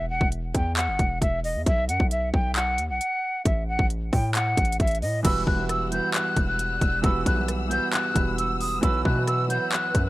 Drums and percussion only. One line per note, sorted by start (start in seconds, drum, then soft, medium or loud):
0.21 kick loud
0.32 closed hi-hat medium
0.55 kick loud
0.55 closed hi-hat medium
0.77 clap loud
0.77 closed hi-hat medium
0.99 kick medium
0.99 closed hi-hat medium
1.22 kick loud
1.22 closed hi-hat medium
1.44 open hi-hat soft
1.66 kick loud
1.66 closed hi-hat medium
1.89 closed hi-hat medium
2.00 kick loud
2.11 closed hi-hat medium
2.34 kick loud
2.56 clap loud
2.56 closed hi-hat medium
2.78 closed hi-hat medium
3.01 closed hi-hat medium
3.45 kick loud
3.45 closed hi-hat medium
3.79 kick loud
3.90 closed hi-hat medium
4.13 kick medium
4.13 open hi-hat medium
4.35 clap loud
4.35 closed hi-hat medium
4.57 kick loud
4.57 closed hi-hat medium
4.65 closed hi-hat medium
4.72 closed hi-hat medium
4.80 kick loud
4.80 closed hi-hat medium
4.87 closed hi-hat medium
4.91 closed hi-hat soft
4.95 closed hi-hat soft
5.02 open hi-hat soft
5.25 kick loud
5.25 closed hi-hat medium
5.25 crash loud
5.47 kick medium
5.69 cross-stick medium
5.69 closed hi-hat medium
5.92 closed hi-hat medium
6.14 clap loud
6.14 closed hi-hat medium
6.36 kick loud
6.36 closed hi-hat medium
6.59 closed hi-hat medium
6.81 kick loud
6.81 closed hi-hat medium
7.04 kick loud
7.04 closed hi-hat medium
7.26 kick medium
7.26 closed hi-hat medium
7.48 cross-stick medium
7.48 closed hi-hat medium
7.71 closed hi-hat medium
7.93 clap loud
7.93 closed hi-hat medium
8.16 kick loud
8.16 closed hi-hat medium
8.38 closed hi-hat medium
8.61 open hi-hat medium
8.83 kick loud
8.83 closed hi-hat medium
9.05 kick medium
9.27 cross-stick medium
9.27 closed hi-hat medium
9.50 closed hi-hat medium
9.72 clap loud
9.72 closed hi-hat medium
9.95 kick loud
9.95 closed hi-hat medium